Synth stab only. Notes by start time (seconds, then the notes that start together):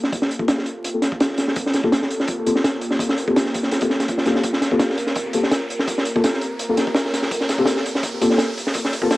0.40 A#3 C4 F4 G4 A4
0.94 A#3 C4 F4 G4 A4
1.84 A#3 C4 F4 G4 A4
2.46 A#3 C4 F4 G4 A4
3.27 A#3 C4 F4 G4 A4
3.82 A#3 C4 F4 G4 A4
4.26 A#3 C4 F4 G4 A4
4.72 A#3 C4 F4 G4 A4
5.34 A#3 C4 F4 G4 A4
6.15 A#3 C4 F4 G4 A4
6.69 A#3 C4 F4 G4 A4
7.59 A#3 C4 F4 G4 A4
8.21 A#3 C4 F4 G4 A4
9.02 A#3 C4 F4 G4 A4